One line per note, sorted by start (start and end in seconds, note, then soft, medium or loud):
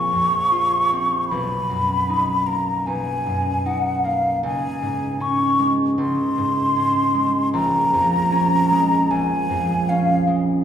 0.00 1.34 A#1 soft
0.00 0.12 F2 soft
0.00 0.91 C4 soft
0.00 0.50 F4 soft
0.00 1.28 C#6 medium
0.13 1.34 F2 soft
0.52 1.34 F4 soft
0.92 1.34 C4 soft
1.29 2.86 B1 soft
1.29 2.48 B5 medium
1.69 3.25 F#2 soft
2.09 3.64 D#4 soft
2.47 4.03 A#3 soft
2.47 2.88 A#5 medium
2.86 4.47 B1 soft
2.86 3.68 G#5 medium
3.26 4.47 F#2 soft
3.66 4.47 D#4 soft
3.66 4.07 F#5 medium
4.04 4.47 A#3 soft
4.04 4.44 F5 medium
4.43 5.97 C#2 soft
4.43 5.23 G#5 medium
4.82 6.37 G#2 soft
5.20 6.75 C#4 soft
5.20 5.73 C#6 medium
5.59 7.13 G#3 soft
5.98 7.56 C#2 soft
5.98 7.50 C6 medium
6.38 7.56 G#2 soft
6.76 8.31 C#4 soft
7.14 8.69 G#3 soft
7.53 9.09 A#1 medium
7.53 9.12 A#5 medium
7.93 9.49 F2 soft
8.32 9.88 C#4 soft
8.71 10.26 G#3 soft
9.11 10.64 A#1 soft
9.11 9.91 G#5 medium
9.50 10.64 F2 soft
9.89 10.64 C#4 soft
9.89 10.28 F5 medium
10.27 10.64 G#3 soft